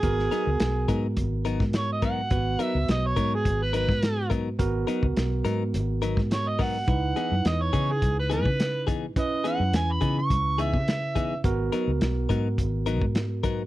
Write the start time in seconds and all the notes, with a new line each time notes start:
Already playing: G#4
0.03 G#1 B3 F#4 A#4, kick, closed hi-hat
0.19 snare
0.31 F#3 B3 D#4 A#4, closed hi-hat
0.47 C#2
0.60 B1, snare, closed hi-hat
0.88 G#2 F#3 B3 D#4 A#4, kick, closed hi-hat
1.17 G#1, kick, closed hi-hat
1.45 F#3 B3 D#4 A#4, closed hi-hat
1.60 G#2, kick, snare
1.73 C#5, snare, closed hi-hat
1.92 D#5
2.02 F#3 B3 D#4 A#4 F#5, kick, closed hi-hat
2.30 G#1 B3 F#4 B4, kick, closed hi-hat
2.59 F#3 B3 D#4 A#4, closed hi-hat
2.64 E5
2.75 C#2
2.88 B1 D#5, snare, closed hi-hat
3.06 C#5
3.16 G#2 F#3 B3 D#4 A#4, kick, closed hi-hat
3.34 G#4
3.45 G#1, kick, closed hi-hat
3.62 B4
3.73 F#3 B3 D#4 A#4 B4, closed hi-hat
3.89 G#2, kick, snare
4.03 snare, closed hi-hat
4.30 F#3 B3 D#4 A#4, kick, closed hi-hat
4.59 G#1 B3 F#4 A#4, kick, closed hi-hat
4.87 F#3 B3 D#4 A#4, closed hi-hat
5.03 C#2, kick
5.17 B1, snare, closed hi-hat
5.45 G#2 F#3 B3 D#4 A#4, closed hi-hat
5.74 G#1, closed hi-hat
6.02 F#3 B3 D#4 A#4, closed hi-hat
6.17 G#2, kick, snare
6.31 C#5, snare, closed hi-hat
6.48 D#5
6.59 F#3 B3 D#4 A#4 F#5, kick, open hi-hat
6.87 C#2 D#4 E4 B4, kick, closed hi-hat
7.16 E3 B3 D#4 G#4, closed hi-hat
7.32 F#2
7.45 E2 D#5, snare, closed hi-hat
7.62 C#5
7.73 C#3 E3 B3 D#4 G#4, kick, closed hi-hat
7.91 G#4
8.02 C#2, kick, closed hi-hat
8.19 B4
8.30 E3 B3 D#4 G#4 B4, closed hi-hat
8.46 C#3, kick
8.60 snare, closed hi-hat
8.87 E3 B3 D#4 G#4, kick, closed hi-hat
9.16 C#2 C#4 E4 B4 D#5, kick, closed hi-hat
9.44 E3 B3 D#4 G#4 F#5, closed hi-hat
9.60 F#2
9.73 E2 G#5, snare, closed hi-hat
9.91 B5
10.01 C#3 E3 B3 D#4 G#4, kick, closed hi-hat
10.19 C#6
10.30 C#2, kick, closed hi-hat
10.58 E3 B3 D#4 G#4 E5, closed hi-hat
10.73 C#3, kick
10.88 snare, closed hi-hat
11.15 E3 B3 D#4 G#4, kick, closed hi-hat
11.44 G#1 B3 F#4 A#4, kick, closed hi-hat
11.72 F#3 B3 D#4 A#4, closed hi-hat
11.88 C#2
12.01 B1, snare, closed hi-hat
12.29 G#2 F#3 B3 D#4 A#4, kick, closed hi-hat
12.58 G#1, kick, closed hi-hat
12.86 F#3 B3 D#4 A#4, closed hi-hat
13.02 G#2, kick
13.15 snare, closed hi-hat
13.44 F#3 B3 D#4 A#4, kick, closed hi-hat